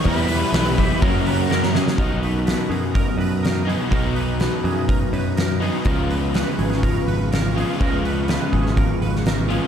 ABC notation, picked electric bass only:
X:1
M:4/4
L:1/8
Q:1/4=124
K:B
V:1 name="Picked electric bass" clef=bass
E,,2 B,,,2 F,,4 | B,,,3 F,,2 F,,3 | B,,,3 F,,2 F,,3 | C,,3 G,,,2 G,,,3 |
C,,3 G,,,2 G,,,3 |]